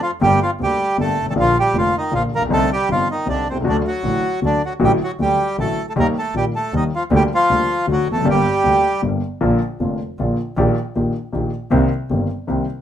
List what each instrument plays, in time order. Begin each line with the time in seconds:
0.02 bandoneon F3 F4
0.21 double bass G1, grand piano G1 G2 D3 A3 A#3 G4, bandoneon G3 G4
0.43 bandoneon F3 F4
0.60 double bass D2, grand piano D2 D3 A3 A#3 G4, bandoneon G3 G4
0.97 grand piano G1 G2 D3 A3 A#3 G4, double bass G1, bandoneon A4
1.02 bandoneon A3
1.17 double bass G#1
1.21 grand piano G1
1.27 grand piano G#1, bandoneon A4
1.31 grand piano A1, bandoneon A3
1.35 double bass A#1, grand piano A#1 A#2 D3 F3 A#3 F4
1.40 bandoneon F3 F4
1.59 bandoneon G3 G4
1.74 double bass F1, grand piano F1 F2 D3 F3 A#3 F4, bandoneon F4
1.78 bandoneon F3
1.98 bandoneon D#3 D#4
2.11 grand piano A#1 A#2 D3 F3 A#3 F4, double bass A#1, bandoneon F3 F4
2.32 grand piano A1, double bass A#1, bandoneon A#3 A#4
2.40 grand piano A#1
2.45 grand piano B1
2.50 double bass C2, grand piano C2 C3 D3 G3 C4 D#4, bandoneon A4
2.55 bandoneon A3
2.73 bandoneon G3 G4
2.89 grand piano G1 G2 D3 G3 C4 D#4, double bass G1, bandoneon F3 F4
3.11 bandoneon D#3 D#4
3.26 grand piano C2 C3 D3 G3 C4 D#4, double bass C2, bandoneon D4
3.31 bandoneon D3
3.46 double bass C2, bandoneon C4
3.51 grand piano B1, bandoneon C3
3.56 grand piano C2
3.60 grand piano C#2 D3 F#3 A3
3.65 grand piano D2 F#4, double bass D2
3.69 bandoneon D3 D4
3.87 bandoneon F#3 F#4
4.03 double bass A1, grand piano A1 A2 D3 F#3 A3 F#4
4.42 grand piano D2 D3 F#3 A3 F#4, double bass D2, bandoneon D3 D4
4.65 bandoneon F#3 F#4
4.79 grand piano A1 A2 D3 F#3 A3 F#4, double bass A1
4.84 bandoneon G3 G4
5.04 bandoneon F#3 F#4
5.19 double bass D2, grand piano D2 D3 F#3 A3 F#4, bandoneon G3 G4
5.58 double bass A1, grand piano A1 A2 D3 F#3 A3 F#4, bandoneon A3 A4
5.89 bandoneon A3 A4
5.96 grand piano D#2 D#3 G3 A#3 G4, double bass D#2, bandoneon A#3 A#4
6.18 bandoneon A3 A4
6.34 double bass A#1, grand piano A#1 A#2 D#3 G3 A#3 G4, bandoneon G3 G4
6.55 bandoneon A3 A4
6.73 grand piano D#2 D#3 G3 A#3 G4, double bass D#2, bandoneon D#3 D#4
6.95 bandoneon F3 F4
7.11 double bass D2, grand piano D2 D3 G3 A#3 G4
7.15 bandoneon G3 G4
7.34 bandoneon F3 F4
7.50 double bass D2, grand piano D2 D3 G3 A#3 G4
7.87 grand piano D2 D3 F#3 A3 F#4, double bass D2
7.92 bandoneon F#3 F#4
8.07 double bass F1, grand piano E2
8.11 grand piano F2, bandoneon A3 A4
8.21 grand piano F#2
8.25 grand piano G1 G2 D3 G3 A#3 G4, double bass G1
8.30 bandoneon G3 G4
8.64 grand piano D2 D3 G3 A#3 G4, double bass D2
9.02 grand piano G1 G2 D3 G3 A#3 G4, double bass G1
9.41 grand piano A#1 A#2 D3 F3 A#3 F4, double bass A#1
9.80 grand piano F1 F2 D3 F3 A#3 F4, double bass F1
10.19 double bass A#1, grand piano A#1 A#2 D3 F3 A#3 F4
10.57 double bass A#1, grand piano A#1 A#2 D#3 A#3 D4 G4
10.95 grand piano A#1 A#2 D#3 A#3 D4 G4, double bass A#1
11.32 grand piano A#1 A#2 D#3 A#3 D4 G4, double bass A#1
11.70 grand piano C2 C3 D#3 A#3 C4 G4, double bass C2
12.10 double bass G1, grand piano G1 G2 D#3 A#3 C4 G4
12.47 grand piano C2 C3 D#3 A#3 C4 G4, double bass C2